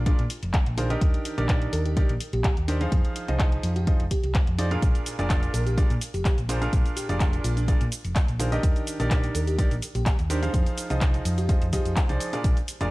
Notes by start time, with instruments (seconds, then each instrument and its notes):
Already playing: fingered electric bass A#1
0.06 upright piano A#2 D4 F4 G#4 A#4 D5, fm electric piano D4, kick, closed hi-hat
0.19 fingered electric bass A#2, closed hi-hat
0.30 open hi-hat
0.43 fingered electric bass F1, closed hi-hat
0.54 kick, clap, closed hi-hat
0.66 fingered electric bass A#1, closed hi-hat
0.78 upright piano D#3 D4 F4 G#4 A#4 C5, open hi-hat
0.90 upright piano D#3 D4 D#4 G4 A#4 D#5, closed hi-hat
1.01 fingered electric bass D#2, kick, closed hi-hat
1.14 closed hi-hat
1.25 open hi-hat
1.38 fingered electric bass A#1, upright piano D#3 D4 D#4 G4 A#4 D5, closed hi-hat
1.49 upright piano D#3 D4 D#4 G4 A#4 D5, kick, clap, closed hi-hat
1.62 closed hi-hat
1.73 fingered electric bass D#2, fm electric piano A#4, open hi-hat
1.86 fm electric piano G4, closed hi-hat
1.97 upright piano D#3 D4 D#4 G4 A#4 D5, fm electric piano G4, kick, closed hi-hat
2.09 fingered electric bass A#1, closed hi-hat
2.20 open hi-hat
2.33 fingered electric bass A#1, fm electric piano G4, closed hi-hat
2.44 fm electric piano G4, kick, clap, closed hi-hat
2.57 fingered electric bass D#2, closed hi-hat
2.68 fm electric piano D4, upright piano D4 D#4 G4 A#4 C5, open hi-hat
2.81 upright piano F3 D#4 F4 G#4 C5 F5, closed hi-hat
2.92 fingered electric bass F2, kick, closed hi-hat
3.05 closed hi-hat
3.16 open hi-hat
3.28 fingered electric bass C2, upright piano F3 D#4 F4 G#4 C5 D#5, closed hi-hat
3.39 upright piano F3 D#4 F4 G#4 C5 D#5, kick, clap, closed hi-hat
3.52 closed hi-hat
3.63 fingered electric bass F2, open hi-hat
3.76 fm electric piano G4, closed hi-hat
3.87 upright piano F3 D#4 F4 G#4 C5 D#5, kick, closed hi-hat
4.00 fingered electric bass F1, closed hi-hat
4.11 fm electric piano G4, kick, open hi-hat
4.24 fingered electric bass C2, fm electric piano G4, closed hi-hat
4.35 kick, clap, closed hi-hat
4.47 fingered electric bass F2, closed hi-hat
4.58 upright piano D#4 F4 G#4 C5 D5, open hi-hat
4.71 upright piano A#2 D4 F4 G#4 A#4 F5, closed hi-hat
4.82 fingered electric bass A#1, kick, closed hi-hat, shaker
4.95 closed hi-hat, shaker
5.06 open hi-hat, shaker
5.19 fingered electric bass F1, upright piano A#2 D4 F4 G#4 A#4 D5, closed hi-hat, shaker
5.30 upright piano D4 F4 G#4 A#4 D5, kick, clap, closed hi-hat, shaker
5.43 closed hi-hat, shaker
5.54 fingered electric bass A#1, fm electric piano A#4, open hi-hat, shaker
5.66 fm electric piano G4, closed hi-hat, shaker
5.77 upright piano A#2 D4 F4 G#4 A#4 D5, fm electric piano G4, kick, closed hi-hat, shaker
5.90 fingered electric bass A#2, closed hi-hat, shaker
6.01 open hi-hat, shaker
6.14 fingered electric bass F1, fm electric piano G4, closed hi-hat, shaker
6.25 fm electric piano G4, kick, clap, closed hi-hat, shaker
6.38 fingered electric bass A#1, closed hi-hat, shaker
6.49 upright piano A#2 D4 F4 G#4 A#4 C5, open hi-hat, shaker
6.62 upright piano A#2 D4 F4 G#4 A#4 F5, closed hi-hat, shaker
6.73 fingered electric bass A#1, kick, closed hi-hat, shaker
6.86 closed hi-hat, shaker
6.97 fm electric piano G4, open hi-hat, shaker
7.09 fingered electric bass F1, upright piano A#2 D4 F4 G#4 A#4 D5, closed hi-hat, shaker
7.20 upright piano A#2 D4 F4 G#4 A#4 D5, kick, clap, closed hi-hat, shaker
7.33 closed hi-hat, shaker
7.44 fingered electric bass A#1, fm electric piano F4, open hi-hat, shaker
7.57 fm electric piano D4, closed hi-hat, shaker
7.68 upright piano A#2 D4 F4 G#4 A#4 D5, fm electric piano D4, kick, closed hi-hat, shaker
7.81 fingered electric bass A#2, closed hi-hat, shaker
7.92 open hi-hat, shaker
8.05 fingered electric bass F1, closed hi-hat, shaker
8.16 kick, clap, closed hi-hat, shaker
8.28 fingered electric bass A#1, closed hi-hat, shaker
8.39 upright piano D#3 D4 F4 G#4 A#4 C5, open hi-hat, shaker
8.52 upright piano D#3 D4 D#4 G4 A#4 D#5, closed hi-hat, shaker
8.63 fingered electric bass D#2, kick, closed hi-hat, shaker
8.76 closed hi-hat, shaker
8.87 open hi-hat, shaker
9.00 fingered electric bass A#1, upright piano D#3 D4 D#4 G4 A#4 D5, closed hi-hat, shaker
9.11 upright piano D#3 D4 D#4 G4 A#4 D5, kick, clap, closed hi-hat, shaker
9.24 closed hi-hat, shaker
9.35 fingered electric bass D#2, fm electric piano A#4, open hi-hat, shaker
9.47 fm electric piano G4, closed hi-hat, shaker
9.59 upright piano D#3 D4 D#4 G4 A#4 D5, fm electric piano G4, kick, closed hi-hat, shaker
9.71 fingered electric bass A#1, closed hi-hat, shaker
9.82 open hi-hat, shaker
9.95 fingered electric bass A#1, fm electric piano G4, closed hi-hat, shaker
10.06 fm electric piano G4, kick, clap, closed hi-hat, shaker
10.19 fingered electric bass D#2, closed hi-hat, shaker
10.30 upright piano D4 D#4 G4 A#4 C5, fm electric piano D4, open hi-hat, shaker
10.43 upright piano F3 D#4 F4 G#4 C5 F5, closed hi-hat, shaker
10.54 fingered electric bass F2, kick, closed hi-hat, shaker
10.66 closed hi-hat, shaker
10.78 open hi-hat, shaker
10.90 fingered electric bass C2, upright piano F3 D#4 F4 G#4 C5 D#5, closed hi-hat, shaker
11.01 upright piano F3 D#4 F4 G#4, kick, clap, closed hi-hat, shaker
11.14 closed hi-hat, shaker
11.25 fingered electric bass F2, open hi-hat, shaker
11.38 fm electric piano G4, closed hi-hat, shaker
11.49 upright piano F3 D#4 F4 G#4 C5 D#5, kick, closed hi-hat, shaker
11.62 fingered electric bass F2, closed hi-hat, shaker
11.73 upright piano F3 D#4 F4 G#4 C5 D#5, fm electric piano G4, kick, open hi-hat, shaker
11.85 fingered electric bass F2, fm electric piano G4, closed hi-hat, shaker
11.96 kick, clap, closed hi-hat, shaker
12.09 fingered electric bass C2, upright piano F3 D#4 F4 G#4 C5 D5, closed hi-hat, shaker
12.20 open hi-hat, shaker
12.33 upright piano A#2 D4 F4 G#4 A#4 D5, closed hi-hat, shaker
12.44 fingered electric bass A#1, kick, closed hi-hat, shaker
12.57 closed hi-hat, shaker
12.68 open hi-hat, shaker
12.81 fingered electric bass F1, upright piano A#2 D4 F4 G#4 A#4 D5, closed hi-hat, shaker